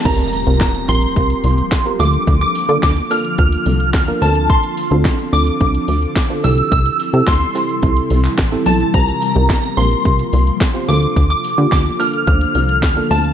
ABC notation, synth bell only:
X:1
M:4/4
L:1/16
Q:1/4=108
K:Bblyd
V:1 name="Synth bell"
b6 c'8 d'2- | d' d'3 d'2 f'2 f'6 a2 | c'4 z2 d'6 z2 e'2 | e'4 c'6 z4 a2 |
b6 c'8 d'2- | d' d'3 d'2 f'2 f'6 a2 |]